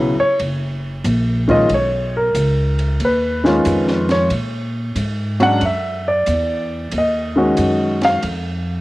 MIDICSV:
0, 0, Header, 1, 5, 480
1, 0, Start_track
1, 0, Tempo, 653595
1, 1247, Time_signature, 4, 2, 24, 8
1, 6469, End_track
2, 0, Start_track
2, 0, Title_t, "Grand piano"
2, 0, Program_c, 0, 0
2, 0, Note_on_c, 0, 49, 59
2, 0, Note_on_c, 0, 54, 57
2, 0, Note_on_c, 0, 59, 51
2, 0, Note_on_c, 0, 64, 72
2, 0, Note_on_c, 0, 71, 64
2, 100, Note_off_c, 0, 49, 0
2, 100, Note_off_c, 0, 54, 0
2, 102, Note_off_c, 0, 59, 0
2, 106, Note_off_c, 0, 64, 0
2, 112, Note_off_c, 0, 71, 0
2, 146, Note_on_c, 0, 73, 89
2, 290, Note_off_c, 0, 73, 0
2, 1085, Note_on_c, 0, 51, 69
2, 1090, Note_on_c, 0, 56, 64
2, 1093, Note_on_c, 0, 61, 60
2, 1098, Note_on_c, 0, 65, 82
2, 1108, Note_on_c, 0, 75, 100
2, 1229, Note_off_c, 0, 51, 0
2, 1231, Note_off_c, 0, 56, 0
2, 1232, Note_off_c, 0, 61, 0
2, 1235, Note_off_c, 0, 65, 0
2, 1251, Note_off_c, 0, 75, 0
2, 1279, Note_on_c, 0, 73, 76
2, 1578, Note_off_c, 0, 73, 0
2, 1592, Note_on_c, 0, 70, 74
2, 2188, Note_off_c, 0, 70, 0
2, 2238, Note_on_c, 0, 71, 79
2, 2525, Note_on_c, 0, 51, 72
2, 2531, Note_on_c, 0, 56, 67
2, 2538, Note_on_c, 0, 61, 68
2, 2542, Note_on_c, 0, 65, 77
2, 2998, Note_off_c, 0, 71, 0
2, 3022, Note_on_c, 0, 73, 83
2, 3133, Note_off_c, 0, 51, 0
2, 3136, Note_off_c, 0, 56, 0
2, 3140, Note_off_c, 0, 61, 0
2, 3141, Note_off_c, 0, 65, 0
2, 3168, Note_off_c, 0, 73, 0
2, 3964, Note_on_c, 0, 54, 75
2, 3971, Note_on_c, 0, 56, 56
2, 3974, Note_on_c, 0, 61, 66
2, 3981, Note_on_c, 0, 62, 70
2, 3985, Note_on_c, 0, 78, 114
2, 4108, Note_off_c, 0, 54, 0
2, 4112, Note_off_c, 0, 56, 0
2, 4114, Note_off_c, 0, 61, 0
2, 4117, Note_off_c, 0, 62, 0
2, 4130, Note_off_c, 0, 78, 0
2, 4152, Note_on_c, 0, 76, 75
2, 4455, Note_off_c, 0, 76, 0
2, 4464, Note_on_c, 0, 74, 74
2, 5065, Note_off_c, 0, 74, 0
2, 5125, Note_on_c, 0, 75, 79
2, 5404, Note_on_c, 0, 51, 65
2, 5409, Note_on_c, 0, 56, 68
2, 5416, Note_on_c, 0, 61, 60
2, 5419, Note_on_c, 0, 66, 71
2, 5882, Note_off_c, 0, 75, 0
2, 5910, Note_on_c, 0, 77, 94
2, 6013, Note_off_c, 0, 51, 0
2, 6016, Note_off_c, 0, 56, 0
2, 6019, Note_off_c, 0, 61, 0
2, 6021, Note_off_c, 0, 66, 0
2, 6053, Note_off_c, 0, 77, 0
2, 6469, End_track
3, 0, Start_track
3, 0, Title_t, "Upright bass"
3, 0, Program_c, 1, 32
3, 0, Note_on_c, 1, 35, 87
3, 108, Note_off_c, 1, 35, 0
3, 292, Note_on_c, 1, 30, 70
3, 755, Note_off_c, 1, 30, 0
3, 767, Note_on_c, 1, 34, 92
3, 1232, Note_off_c, 1, 34, 0
3, 1246, Note_on_c, 1, 35, 77
3, 1712, Note_off_c, 1, 35, 0
3, 1722, Note_on_c, 1, 37, 81
3, 2190, Note_off_c, 1, 37, 0
3, 2203, Note_on_c, 1, 39, 76
3, 2671, Note_off_c, 1, 39, 0
3, 2686, Note_on_c, 1, 41, 96
3, 3152, Note_off_c, 1, 41, 0
3, 3160, Note_on_c, 1, 46, 73
3, 3629, Note_off_c, 1, 46, 0
3, 3639, Note_on_c, 1, 44, 89
3, 4109, Note_off_c, 1, 44, 0
3, 4122, Note_on_c, 1, 42, 73
3, 4591, Note_off_c, 1, 42, 0
3, 4607, Note_on_c, 1, 40, 90
3, 5073, Note_off_c, 1, 40, 0
3, 5084, Note_on_c, 1, 39, 77
3, 5552, Note_off_c, 1, 39, 0
3, 5565, Note_on_c, 1, 42, 86
3, 6033, Note_off_c, 1, 42, 0
3, 6043, Note_on_c, 1, 41, 77
3, 6469, Note_off_c, 1, 41, 0
3, 6469, End_track
4, 0, Start_track
4, 0, Title_t, "Muted upright bass strokes"
4, 134, Note_on_c, 9, 29, 36
4, 207, Note_off_c, 9, 29, 0
4, 6469, End_track
5, 0, Start_track
5, 0, Title_t, "Drums"
5, 290, Note_on_c, 9, 51, 62
5, 363, Note_off_c, 9, 51, 0
5, 767, Note_on_c, 9, 44, 66
5, 767, Note_on_c, 9, 51, 65
5, 840, Note_off_c, 9, 44, 0
5, 840, Note_off_c, 9, 51, 0
5, 1093, Note_on_c, 9, 51, 44
5, 1094, Note_on_c, 9, 36, 53
5, 1166, Note_off_c, 9, 51, 0
5, 1167, Note_off_c, 9, 36, 0
5, 1244, Note_on_c, 9, 51, 61
5, 1318, Note_off_c, 9, 51, 0
5, 1724, Note_on_c, 9, 44, 64
5, 1724, Note_on_c, 9, 51, 67
5, 1798, Note_off_c, 9, 44, 0
5, 1798, Note_off_c, 9, 51, 0
5, 2048, Note_on_c, 9, 51, 49
5, 2121, Note_off_c, 9, 51, 0
5, 2203, Note_on_c, 9, 51, 63
5, 2276, Note_off_c, 9, 51, 0
5, 2531, Note_on_c, 9, 38, 38
5, 2605, Note_off_c, 9, 38, 0
5, 2679, Note_on_c, 9, 44, 68
5, 2679, Note_on_c, 9, 51, 66
5, 2753, Note_off_c, 9, 44, 0
5, 2753, Note_off_c, 9, 51, 0
5, 2845, Note_on_c, 9, 38, 33
5, 2918, Note_off_c, 9, 38, 0
5, 3003, Note_on_c, 9, 51, 46
5, 3004, Note_on_c, 9, 38, 42
5, 3077, Note_off_c, 9, 38, 0
5, 3077, Note_off_c, 9, 51, 0
5, 3159, Note_on_c, 9, 51, 63
5, 3233, Note_off_c, 9, 51, 0
5, 3640, Note_on_c, 9, 44, 49
5, 3640, Note_on_c, 9, 51, 70
5, 3714, Note_off_c, 9, 44, 0
5, 3714, Note_off_c, 9, 51, 0
5, 3967, Note_on_c, 9, 51, 48
5, 4040, Note_off_c, 9, 51, 0
5, 4119, Note_on_c, 9, 51, 63
5, 4193, Note_off_c, 9, 51, 0
5, 4600, Note_on_c, 9, 44, 63
5, 4600, Note_on_c, 9, 51, 67
5, 4673, Note_off_c, 9, 44, 0
5, 4673, Note_off_c, 9, 51, 0
5, 5079, Note_on_c, 9, 51, 75
5, 5152, Note_off_c, 9, 51, 0
5, 5559, Note_on_c, 9, 44, 48
5, 5559, Note_on_c, 9, 51, 69
5, 5632, Note_off_c, 9, 44, 0
5, 5632, Note_off_c, 9, 51, 0
5, 5886, Note_on_c, 9, 51, 50
5, 5890, Note_on_c, 9, 38, 51
5, 5960, Note_off_c, 9, 51, 0
5, 5963, Note_off_c, 9, 38, 0
5, 6041, Note_on_c, 9, 51, 61
5, 6115, Note_off_c, 9, 51, 0
5, 6469, End_track
0, 0, End_of_file